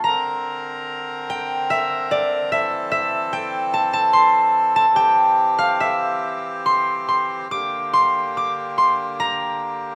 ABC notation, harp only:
X:1
M:3/4
L:1/16
Q:1/4=72
K:Gdor
V:1 name="Harp"
b6 g2 e2 d2 | e2 e2 g2 a a c'3 a | g3 f e4 c'2 c'2 | d'2 c'2 d'2 c'2 b4 |]